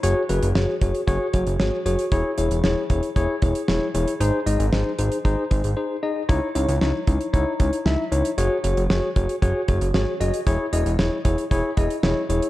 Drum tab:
HH |x-xx--xxx-xx--xx|x-xx--xxx-xx--xx|x-xx--xxx-xx----|x-xx--xxx-xx--xx|
SD |----o-------o---|----o-------o---|----o-----------|----o-------o---|
BD |------o-o-o-----|o-----o-o-o-----|--------o-o-----|o-----o-o-o-----|

HH |x-xx--xxx-xx--xx|x-xx--xxx-xx--xx|
SD |----o-------o---|----o-------o---|
BD |------o-o-o-----|o-----o-o-o-----|